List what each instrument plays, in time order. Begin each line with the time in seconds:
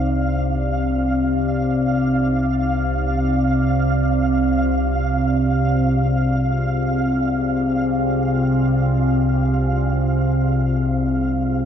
Already playing: synth drone C2 C3, ambient pad D#4 C5 D5, synth texture F5
3.61 ambient pad C4
4.49 ambient pad G#4
5.04 ambient pad F4